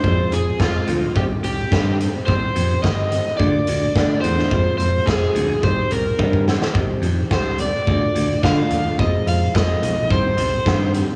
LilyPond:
<<
  \new Staff \with { instrumentName = "Overdriven electric guitar" } { \time 4/4 \key c \minor \tempo 4 = 107 c''8 aes'8 f'4 g'8 g'4 r8 | c''4 ees''4 d''4. c''8~ | c''8 c''8 aes'4 c''8 bes'4 r8 | r4 c''8 d''4. f''4 |
ees''8 f''8 ees''4 c''4. r8 | }
  \new Staff \with { instrumentName = "Overdriven electric guitar" } { \time 4/4 \key c \minor <f aes c' f'>8 <f aes c' f'>8 <f aes c' f'>8 <f aes c' f'>8 <c ees g c' g'>16 <g c' g'>16 <ees g c' g'>8 <c ees g c' g'>8 <ees g c' g'>16 <g c' g'>16 | <c ees g c' g'>8 <ees g c' g'>8 <c ees g c' g'>8 <ees g c' g'>8 <d a d' f'>16 <a d' f'>16 <d a d' f'>8 <d a d' f'>8 <d a d' f'>16 <a d' f'>16 | <f aes c' f'>8 <f aes c' f'>8 <f aes c' f'>8 <f aes c' f'>8 <c ees g c' g'>16 <g c' g'>16 <ees g c' g'>8 <c ees g c' g'>8 <ees g c' g'>16 <g c' g'>16 | <c ees g c' g'>8 <ees g c' g'>8 <c ees g c' g'>8 <ees g c' g'>8 <d a d' f'>16 <a d' f'>16 <d a d' f'>8 <d a d' f'>8 <d a d' f'>16 <a d' f'>16 |
<f aes c' f'>8 <f aes c' f'>8 <f aes c' f'>8 <f aes c' f'>8 <c ees g c' g'>16 <g c' g'>16 <ees g c' g'>8 <c ees g c' g'>8 <ees g c' g'>16 <g c' g'>16 | }
  \new Staff \with { instrumentName = "Picked electric bass" } { \clef bass \time 4/4 \key c \minor f,,8 f,,8 f,,8 d,8 c,8 c,8 g,4 | c,8 f,8 g,,4 d,8 d,8 d8 e,8 | f,,8 f,,8 f,,8 d,8 c,8 c,8 g,4 | c,8 f,8 des,4 d,8 d,8 d8 ees,8 |
f,,8 f,,8 f,,8 b,,8 c,8 c,8 g,4 | }
  \new DrumStaff \with { instrumentName = "Drums" } \drummode { \time 4/4 bd8 hh8 <bd sn>8 hh8 bd8 hh8 <bd sn>8 hh8 | bd8 hh8 <bd sn>8 hh8 bd8 hh8 <bd sn>8 hh16 sn16 | bd8 hh8 <bd sn>8 hh8 bd8 hh8 <bd tommh>16 bd16 sn16 sn16 | bd8 hh8 <bd sn>8 hh8 bd8 hh8 <bd sn>8 hh8 |
bd8 hh8 <bd sn>8 hh8 bd8 hh8 <bd sn>8 hh8 | }
>>